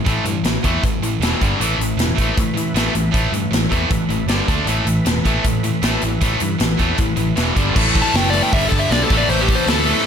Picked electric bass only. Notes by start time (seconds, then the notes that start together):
0.06 A1
0.25 G2
0.43 A1
0.64 E2
0.84 A1
1.01 A1
1.20 E1
1.41 G1
1.60 A1
1.79 A1
1.97 E1
2.19 A1
2.38 A2
2.74 A1
2.95 A1
3.14 A1
3.32 G2
3.52 A1
3.72 E2
3.90 A1
4.09 A1
4.26 G1
4.49 D2
4.66 A1
4.85 A1
5.06 E1
5.25 A1
5.45 A2
5.83 A1
6.03 A1
6.21 A1
6.42 G2
6.60 A1
6.80 E2
6.98 A1
7.17 A1
7.38 E1
7.57 G1
7.76 A1
8.14 F#1
8.53 G1
8.72 G1
8.90 B1
9.11 A1
9.29 A1
9.66 D2